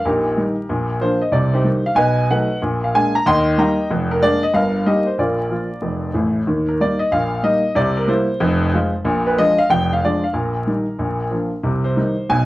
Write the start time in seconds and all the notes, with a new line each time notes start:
0.05 A#1 A#2 D#4 G4 A#4
0.37 D#3 G3 D#4
0.69 A#1 A#2
1.01 F3 A#3 D4 C5
1.22 D#5
1.32 C2 C3 D5
1.54 D#4 G4 C5
1.64 D#3 G3 D#4
1.86 F5
1.95 B1 B2 B4 D#5 G#5
2.30 F#3 A3 D#4 B4 D#5 F#5
2.62 A#1 A#2
2.84 F5
2.95 G#3 A#3 D4 G#5
3.15 A#5
3.26 D#2 D#3 D#5 G5 C6
3.58 G3 A#3 D#4 D#5 G5 A#5
3.90 F1 F2
4.11 A#4
4.21 G#3 A#3 D4 D5
4.43 D#5
4.53 G1 G2 A#4 F5
4.86 G3 A#3 D#4 G4 A#4 D#5
5.07 C5
5.18 A#1 A#2 F4 A#4 D5
5.50 F3 A#3 F4
5.82 F1 F2
6.14 A1 A2
6.47 D#2 D#3
6.68 A#4
6.80 G3 A#3 D#4 D5
6.99 D#5
7.12 A#1 A#2 F5
7.43 G3 A#3 D#4 D#5
7.75 C2 C3 D5
7.97 A#4
8.07 G3 A#3 E4 C5
8.40 F1 F2
8.73 F3 G#3 F4
9.05 A#1 A#2
9.27 B4
9.38 F3 G#3 D4 D#5
9.58 F5
9.70 F1 F2 G5
9.93 F5
10.04 F3 G#3 D4 D5
10.24 F5
10.33 A#1 A#2 A#4
10.67 D#3 G3 D#4
10.99 A#1 A#2
11.31 F3 A#3 D4
11.63 C2 C3
11.84 C5
11.96 D#3 G3 D#4
12.29 B1 B2 G#5